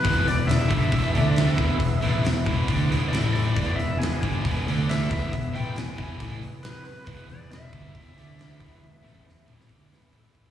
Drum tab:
HH |o-o-o-o-o-o-o-o-|o-o-o-o-o-o-o-o-|o-o-o-o-o-o-o-o-|o-o-o-o-o-o-o-o-|
SD |----o-------o---|----o-------o---|----o-------o---|----o-------o---|
T1 |----------------|----------------|----------------|----------------|
T2 |----------------|----------------|----------------|----------------|
BD |o-----o-o-----o-|o-----o-o-------|o-----o-o-----o-|o-----o-o-------|

HH |o-o-o-o-o-o-o-o-|----------------|
SD |----o-------o---|--o-o--o--o-----|
T1 |----------------|o---------------|
T2 |----------------|------o---------|
BD |o-----o-o-----o-|---o----o--oo-oo|